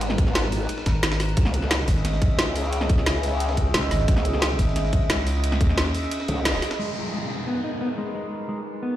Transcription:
Already playing: wobble bass G#1, synth drone G#3 D#4 A#4 B4
0.01 closed hi-hat, ride
0.10 snare
0.18 kick, closed hi-hat, ride
0.27 snare
0.35 snare, closed hi-hat, ride
0.44 snare
0.52 open hi-hat, ride
0.69 closed hi-hat, ride
0.78 snare
0.86 fm bass G#1, kick, snare, closed hi-hat, ride
1.03 snare, closed hi-hat, ride
1.12 snare, closed hi-hat
1.20 snare, open hi-hat, ride
1.29 closed hi-hat
1.37 wobble bass C#2, synth drone C#4 G#4 D#5 E5, kick, closed hi-hat, ride
1.45 snare
1.54 closed hi-hat, ride
1.62 snare
1.71 snare, closed hi-hat, ride
1.79 snare
1.88 fm bass G#1, kick, snare, closed hi-hat, open hi-hat, ride
1.96 snare
2.05 snare, closed hi-hat, ride
2.13 snare
2.22 kick, closed hi-hat, ride
2.39 wobble bass C#2, snare, closed hi-hat, ride
2.56 closed hi-hat, open hi-hat, ride
2.64 snare
2.73 closed hi-hat, ride
2.81 snare
2.89 kick, closed hi-hat, ride
2.98 snare
3.06 snare, closed hi-hat, ride
3.15 snare
3.23 open hi-hat, ride
3.40 closed hi-hat, ride
3.49 snare
3.57 kick, closed hi-hat, ride
3.74 fm bass C#2, snare, closed hi-hat, ride
3.83 snare
3.91 fm bass G#1, snare, closed hi-hat, open hi-hat, ride
4.00 snare
4.08 wobble bass C#2, kick, closed hi-hat, ride
4.17 snare
4.25 closed hi-hat, ride
4.33 snare
4.42 snare, closed hi-hat, ride
4.50 snare
4.59 fm bass G#1, kick, snare, closed hi-hat, open hi-hat, ride
4.67 snare
4.76 snare, closed hi-hat, ride
4.84 snare
4.93 kick, closed hi-hat, ride
5.10 fm bass C#2, snare, closed hi-hat, ride
5.27 closed hi-hat, open hi-hat, ride
5.35 snare
5.44 closed hi-hat, ride
5.52 snare
5.61 fm bass D#2, kick, closed hi-hat, ride
5.69 snare
5.78 snare, closed hi-hat, ride
5.86 snare
5.95 open hi-hat, ride
6.03 snare
6.11 closed hi-hat, ride
6.20 snare
6.28 wobble bass C#2, closed hi-hat, ride
6.45 snare, closed hi-hat, ride
6.54 snare
6.62 snare, closed hi-hat, open hi-hat, ride
6.71 snare, closed hi-hat
6.79 clean electric guitar G#3, synth drone G#3 D#4 A#4 B4, downlifter
7.13 clean electric guitar G#3
7.47 clean electric guitar B3
7.64 clean electric guitar D#4
7.81 clean electric guitar B3
7.98 clean electric guitar G#3
8.15 clean electric guitar G#3
8.49 clean electric guitar G#3
8.83 clean electric guitar B3

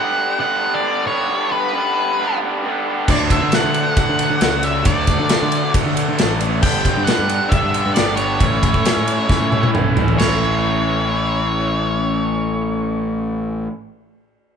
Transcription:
Already playing: overdriven electric guitar G2 D3 G3 B3 D4
0.00 lead electric guitar F#5
0.38 overdriven electric guitar G2 D3 G3 B3 D4, lead electric guitar F#5
0.60 overdriven electric guitar G3 B3 D4
0.74 lead electric guitar D5
0.82 overdriven electric guitar D3 G3 B3 D4
1.05 overdriven electric guitar G3 B3 D4, lead electric guitar C#5
1.28 overdriven electric guitar G2 D3 G3 B3 D4
1.51 overdriven electric guitar G3 B3 D4, lead electric guitar B4
1.73 overdriven electric guitar D3 G3 B3 D4
2.18 overdriven electric guitar G2 D3 G3 B3 D4
2.41 overdriven electric guitar G3 B3 D4
2.63 overdriven electric guitar D3 G3 B3 D4
2.85 overdriven electric guitar G3 B3 D4
3.08 picked electric bass D2, overdriven electric guitar D3 F#3 A3 D4, lead electric guitar D5, kick, crash
3.30 overdriven electric guitar F#3 A3 D4, lead electric guitar E5, kick, ride
3.43 picked electric bass D3
3.52 overdriven electric guitar D3 F#3 A3, lead electric guitar F#5, snare, ride
3.56 overdriven electric guitar D4
3.64 picked electric bass D3
3.74 ride
3.97 overdriven electric guitar D3 F#3 A3, lead electric guitar F#5, kick, ride
4.01 overdriven electric guitar D4
4.09 picked electric bass D3
4.18 overdriven electric guitar F#3 A3 D4, ride
4.30 picked electric bass D3
4.41 picked electric bass C#2, overdriven electric guitar D3 F#3 A3, snare, ride
4.45 overdriven electric guitar D4
4.63 overdriven electric guitar A3 D4, lead electric guitar E5, ride
4.67 overdriven electric guitar F#3
4.85 picked electric bass D2, overdriven electric guitar D3 F#3 A3 D4, lead electric guitar D5, kick, ride
5.07 overdriven electric guitar F#3 A3 D4, kick, ride
5.19 picked electric bass D3
5.29 overdriven electric guitar D3 F#3 A3 D4, snare, ride
5.42 picked electric bass D3
5.52 ride
5.73 overdriven electric guitar D3 F#3 A3 D4, kick, ride
5.86 picked electric bass D3
5.96 overdriven electric guitar F#3 A3 D4, ride
6.09 picked electric bass D3
6.18 picked electric bass A1, overdriven electric guitar D3 F#3 A3 D4, snare, ride
6.39 overdriven electric guitar A3 D4, ride
6.43 overdriven electric guitar F#3
6.63 picked electric bass G1, overdriven electric guitar G2 D3 G3 B3 D4, lead electric guitar G5, kick, crash
6.85 overdriven electric guitar G3 B3 D4, kick, ride
6.97 picked electric bass G2
7.05 overdriven electric guitar D3 G3, lead electric guitar F#5, snare, ride
7.09 overdriven electric guitar B3 D4
7.19 picked electric bass G2
7.29 ride
7.49 overdriven electric guitar G2 D3 G3, lead electric guitar E5, kick, ride
7.54 overdriven electric guitar B3 D4
7.64 picked electric bass G2
7.73 overdriven electric guitar G3 B3 D4, ride
7.86 picked electric bass G2
7.94 picked electric bass G1, overdriven electric guitar D3 G3 B3, lead electric guitar D5, snare, ride
7.99 overdriven electric guitar D4
8.16 overdriven electric guitar B3 D4, lead electric guitar C#5, ride
8.21 overdriven electric guitar G3
8.39 picked electric bass A1, overdriven electric guitar A2 E3 A3 C#4 E4, kick, ride
8.62 overdriven electric guitar A3 C#4 E4, kick, ride
8.74 picked electric bass A2, kick
8.84 overdriven electric guitar E3 A3 C#4 E4, snare, ride
8.97 picked electric bass A2
9.08 ride
9.28 overdriven electric guitar A2 E3 A3 C#4 E4, kick, snare
9.41 picked electric bass A2
9.50 overdriven electric guitar A3 C#4 E4, high tom
9.63 picked electric bass A2, high tom
9.73 overdriven electric guitar E3 A3 C#4 E4, mid tom
9.77 picked electric bass B1
9.95 picked electric bass A1, overdriven electric guitar A3 C#4 E4, floor tom
10.08 floor tom
10.16 overdriven electric guitar A2 E3 A3 C#4 E4, lead electric guitar C#5, crash
10.21 picked electric bass A1, snare

